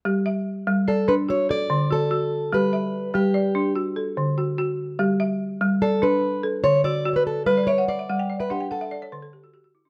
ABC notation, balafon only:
X:1
M:12/8
L:1/16
Q:3/8=97
K:Glyd
V:1 name="Balafon"
G2 e6 d4 F2 A4 F6 | G2 e6 d4 F2 A4 F6 | G2 e6 d6 A4 F6 | z d e f d e f g d e f g f e d c B A G F G F E D |]
V:2 name="Balafon" clef=bass
G,4 z2 G,4 D2 z4 D,4 F4 | G,4 z2 G,4 D2 z4 D,4 F4 | G,4 z2 G,4 D2 z4 D,4 F4 | G,4 z2 G,4 D2 z4 D,4 F4 |]